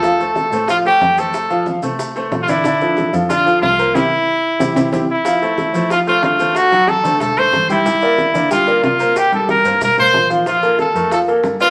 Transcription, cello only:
X:1
M:4/4
L:1/8
Q:1/4=184
K:F
V:1 name="Cello" clef=bass
D,,3 A,,3 F,,2- | F,,3 C,3 B,,2- | B,,3 F,,3 C,,2 | C, z3 C, C, C, z |
z3 F,3 D,2- | D,3 D,3 G,,2- | G,,3 D,3 C,2- | C,3 G,,2 A,, B,,2- |
B,,3 F,,3 G,,2 |]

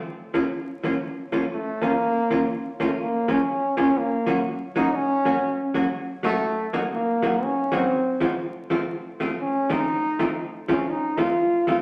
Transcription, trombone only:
X:1
M:4/4
L:1/8
Q:"Swing" 1/4=122
K:Bbm
V:1 name="Trombone"
z6 =A, B,- | B,2 z =A, B, D2 D | B,2 z E D3 z | z =A,2 z B,2 D C- |
C z4 z D E- | E2 z D E F2 F |]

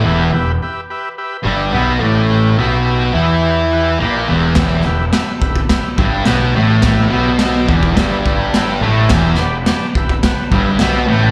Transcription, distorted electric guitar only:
X:1
M:4/4
L:1/8
Q:1/4=106
K:Em
V:1 name="Distorted electric guitar" clef=bass
[E,,E,] E,, z3 [G,,G,] [B,,B,] [A,,A,]- | [A,,A,] [B,,B,]2 [E,E]3 [^A,,^A,] [E,,E,] | [E,,E,] E,, z3 [G,,G,] [B,,B,] [A,,A,]- | [A,,A,] [B,,B,]2 [E,,E,] [G,,G,]3 [A,,A,] |
[E,,E,] E,, z3 [G,,G,] [B,,B,] [A,,A,] |]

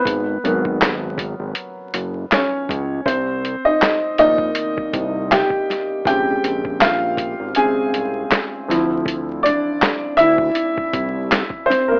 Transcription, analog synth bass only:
X:1
M:4/4
L:1/16
Q:"Swing 16ths" 1/4=80
K:Dphr
V:1 name="Analog synth bass" clef=bass
_A,,,2 A,,,4- A,,, A,,, z2 _G,,,2 z2 _D,,2 | C,,3 z3 B,,,2 z2 C,,3 z3 | B,,,2 B,,,4- B,,, _A,,, z2 C,,2 z2 D,,2- | D,,3 z3 D,,2 z2 C,,3 z3 |]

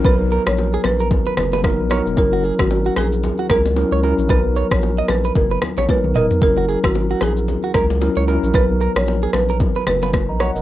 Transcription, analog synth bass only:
X:1
M:4/4
L:1/16
Q:"Swing 16ths" 1/4=113
K:B
V:1 name="Analog synth bass" clef=bass
B,,,3 A,,,3 A,,,3 z F,,,3 A,,,2 E,,, | F,,,3 G,,,3 A,,,3 z C,,3 C,,2 A,,, | B,,,3 A,,,3 A,,,2 F,,,2 z A,,, z B,,, E,,, z | F,,,3 G,,,3 A,,,3 z C,,3 C,,2 A,,, |
B,,,3 A,,,3 A,,,3 z F,,,3 A,,,2 E,,, |]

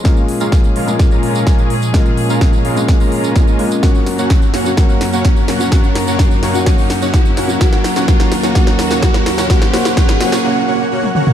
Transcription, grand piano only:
X:1
M:4/4
L:1/16
Q:1/4=127
K:Gblyd
V:1 name="Grand piano"
[A,B,DF]6- [A,B,DF] [A,B,DF]8- [A,B,DF] | [A,B,DF]6- [A,B,DF] [A,B,DF]4- [A,B,DF] [A,B,F] z [A,B,DF]2 | [G,B,DG]6- [G,B,DG] [G,B,DG] [G,B,DG]6- [G,B,DG] [G,B,DG] | [G,B,DG]6- [G,B,DG] [G,B,DG] [G,B,DG]6- [G,B,DG] [G,B,DG] |
[G,B,DG]4 [G,B,DG]4 [G,B,DG]4 [G,B,DG]4 | [G,B,DG]2 [G,B,DG]2 [G,B,DG]2 [G,B,DG]2 z8 |]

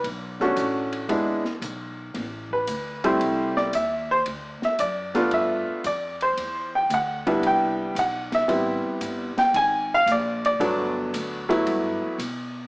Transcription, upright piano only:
X:1
M:4/4
L:1/8
Q:"Swing" 1/4=114
K:G
V:1 name="Upright piano"
z8 | z B2 c2 d e c | z e d2 e2 d c- | c g f2 g2 f e- |
e z2 g _a =f d d- | d z6 z |]
V:2 name="Upright piano"
z [A,^CDF]3 [^G,B,DE] z3 | z3 [G,A,CE]3 z2 | z3 [A,B,D=F]3 z2 | z3 [G,B,DE]3 z2 |
[G,B,CE]3 z4 z | [F,A,B,D]3 [F,A,B,E]3 z2 |]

